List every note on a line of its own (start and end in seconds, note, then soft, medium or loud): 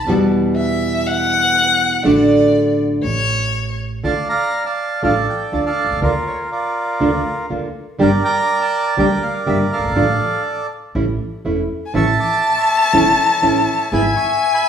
0.07 1.95 E2 medium
0.07 2.04 B2 medium
0.07 2.03 E3 medium
0.07 2.04 G3 medium
0.07 2.05 B3 medium
0.07 2.05 F#4 loud
0.56 1.08 E5 medium
1.07 2.05 F#5 loud
2.04 2.99 A1 medium
2.04 3.02 D3 medium
2.04 3.03 A3 medium
2.04 3.03 D4 medium
2.04 3.04 F#4 medium
2.04 2.75 D5 medium
3.03 3.99 A1 medium
3.03 3.75 C#5 loud
4.04 4.25 D2 medium
4.04 4.13 D3 medium
4.04 4.13 A3 medium
4.04 4.13 D4 medium
4.04 4.13 F4 medium
4.04 4.28 D5 medium
4.04 4.28 F5 medium
4.04 4.27 A5 medium
4.29 4.64 D5 medium
4.29 4.65 F5 medium
4.29 4.64 A#5 medium
4.66 5.02 D5 medium
4.66 5.02 F5 medium
4.66 5.00 A5 medium
5.02 5.24 A1 medium
5.02 5.12 D3 medium
5.02 5.12 A3 medium
5.02 5.12 D4 medium
5.02 5.12 F4 medium
5.02 5.65 A4 medium
5.02 5.64 D5 medium
5.02 5.15 F5 medium
5.29 5.52 G5 medium
5.52 5.74 D2 medium
5.52 5.70 D3 medium
5.52 5.70 A3 medium
5.52 5.70 D4 medium
5.52 5.70 F4 medium
5.52 5.59 A5 medium
5.66 6.00 A4 medium
5.66 6.00 D5 medium
5.66 6.00 F5 medium
5.85 5.90 B1 soft
5.91 5.96 C2 medium
5.97 6.02 C#2 medium
6.02 6.23 D2 medium
6.02 6.11 D3 medium
6.02 6.11 A#3 medium
6.02 6.11 D4 medium
6.02 6.11 F4 medium
6.02 6.50 F4 medium
6.02 6.50 A#4 medium
6.02 6.14 D5 medium
6.27 6.38 C#5 medium
6.52 7.46 F4 medium
6.52 7.46 A#4 soft
6.52 7.22 D5 medium
7.00 7.22 D2 medium
7.00 7.09 D3 medium
7.00 7.10 A#3 medium
7.00 7.10 D4 medium
7.00 7.10 F4 medium
7.50 7.71 D2 medium
7.50 7.67 D3 medium
7.50 7.67 A#3 medium
7.50 7.67 D4 medium
7.50 7.67 F4 medium
7.99 8.20 G1 medium
7.99 8.08 D3 medium
7.99 8.08 G3 medium
7.99 8.08 A#3 medium
7.99 8.08 D4 medium
7.99 8.08 G4 medium
7.99 8.94 A#4 medium
7.99 8.23 D5 medium
7.99 8.12 G5 medium
8.24 8.60 D5 medium
8.24 8.97 G5 medium
8.24 8.62 A#5 medium
8.61 8.97 D5 medium
8.61 8.99 A5 medium
8.97 9.18 D2 medium
8.97 9.06 D3 medium
8.97 9.06 G3 medium
8.97 9.06 A#3 medium
8.97 9.06 D4 medium
8.97 9.06 G4 medium
8.97 9.93 A#4 medium
8.97 9.71 D5 medium
8.97 9.23 G5 medium
9.23 9.34 F5 medium
9.46 9.67 G1 medium
9.46 9.63 D3 medium
9.46 9.63 G3 medium
9.46 9.63 A#3 medium
9.46 9.63 D4 medium
9.46 9.63 G4 medium
9.46 9.58 E5 medium
9.72 10.67 A4 medium
9.72 10.67 D5 medium
9.72 10.42 F5 medium
9.78 9.83 F#1 soft
9.84 9.90 G1 medium
9.90 9.96 G#1 medium
9.96 10.17 A1 medium
9.96 10.05 D3 medium
9.96 10.05 A3 medium
9.96 10.05 D4 medium
9.96 10.05 F4 medium
10.95 11.16 A1 medium
10.95 11.04 E3 medium
10.95 11.04 A3 medium
10.95 11.04 C#4 medium
10.95 11.04 E4 medium
11.45 11.65 E1 medium
11.45 11.62 E3 medium
11.45 11.62 A3 medium
11.45 11.62 C#4 medium
11.45 11.62 E4 medium
11.86 11.95 G#5 medium
11.93 12.15 A1 medium
11.93 12.03 E3 medium
11.93 12.03 A3 medium
11.93 12.03 C#4 medium
11.93 12.03 E4 medium
11.93 12.56 E5 medium
11.93 13.93 A5 loud
11.93 12.19 A5 medium
11.93 12.07 C#6 medium
12.20 12.56 A5 medium
12.20 12.58 D6 medium
12.57 12.94 E5 medium
12.57 12.93 A5 medium
12.57 12.95 C#6 medium
12.93 13.14 E1 medium
12.93 13.02 E3 medium
12.93 13.02 A3 medium
12.93 13.02 C#4 medium
12.93 13.03 E4 medium
12.93 13.88 C#5 medium
12.93 13.88 E5 medium
12.93 13.17 A5 medium
13.19 13.41 A#5 medium
13.42 13.63 A1 medium
13.42 13.59 E3 medium
13.42 13.59 A3 medium
13.42 13.59 C#4 medium
13.42 13.60 E4 medium
13.91 14.12 G#1 medium
13.91 14.01 G#3 medium
13.91 14.01 B3 medium
13.91 14.01 E4 medium
13.91 14.15 E5 medium
13.91 14.69 G#5 loud
13.91 14.15 G#5 medium
13.91 14.04 B5 medium
14.17 14.53 E5 medium
14.17 14.53 G#5 medium
14.17 14.54 C#6 loud
14.54 14.69 E5 medium
14.54 14.69 G#5 medium
14.54 14.69 B5 medium